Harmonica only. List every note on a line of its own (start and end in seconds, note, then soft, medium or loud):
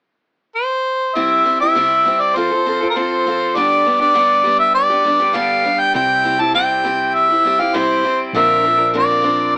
0.55 1.17 C5 medium
1.15 1.60 E5 medium
1.61 2.23 E5 medium
2.21 2.37 D5 medium
2.36 2.89 C5 medium
2.90 2.98 A#4 medium
2.96 3.57 C5 medium
3.56 4.01 D5 medium
4.01 4.57 D5 medium
4.59 4.74 E5 medium
4.75 5.37 D5 medium
5.35 5.81 F5 medium
5.80 5.94 G5 medium
5.95 6.42 G5 medium
6.41 6.54 A5 medium
6.55 7.16 G5 medium
7.14 7.61 E5 medium
7.60 7.77 F5 medium
7.75 8.19 C5 medium
8.36 8.91 E5 medium
8.97 9.51 D5 medium